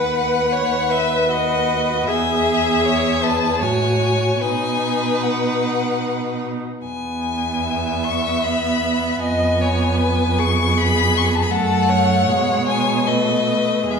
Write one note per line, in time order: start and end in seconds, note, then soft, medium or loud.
0.00 2.04 D#2 soft
0.00 0.54 B4 soft
0.00 2.09 B4 soft
0.00 0.93 F#5 medium
0.52 0.91 C#5 soft
0.90 1.30 B4 soft
0.90 1.32 E5 medium
1.30 2.09 F#4 soft
1.30 2.07 D#5 medium
2.07 3.64 E2 medium
2.07 2.87 G#4 medium
2.07 3.64 G#4 soft
2.07 3.25 E5 medium
2.85 3.25 C#5 medium
3.23 3.61 B4 soft
3.23 3.64 A5 medium
3.62 4.41 A2 soft
3.62 4.44 F#4 soft
3.62 4.42 C#5 medium
3.62 4.41 G#5 medium
4.41 6.61 B2 soft
4.41 6.65 D#4 soft
4.41 6.44 B4 soft
4.41 5.25 G#5 medium
5.23 6.45 F#5 soft
6.85 9.18 E2 soft
6.85 11.48 B3 soft
6.85 8.05 G#5 medium
7.64 9.18 E5 soft
8.04 8.45 C#6 soft
8.43 9.22 B5 medium
9.22 11.48 F2 soft
9.22 9.63 D#5 soft
9.22 10.40 G#5 medium
9.61 9.99 C#5 soft
9.99 10.41 B4 soft
10.39 11.52 G#4 medium
10.39 10.79 C#6 medium
10.77 11.19 B5 medium
11.17 11.27 C#6 medium
11.26 11.37 B5 medium
11.35 11.44 A5 medium
11.43 11.53 B5 medium
11.51 12.30 F#2 medium
11.51 12.31 A3 soft
11.51 11.91 A4 medium
11.51 12.66 F#5 medium
11.89 13.08 C#5 medium
12.29 13.90 B2 soft
12.29 13.09 G#3 soft
12.67 13.08 G#5 medium
13.07 13.90 A3 soft
13.07 13.89 B4 soft
13.07 13.92 D#5 medium
13.89 14.00 E2 soft
13.89 14.00 G#3 soft
13.89 14.00 G#4 soft
13.89 14.00 E5 soft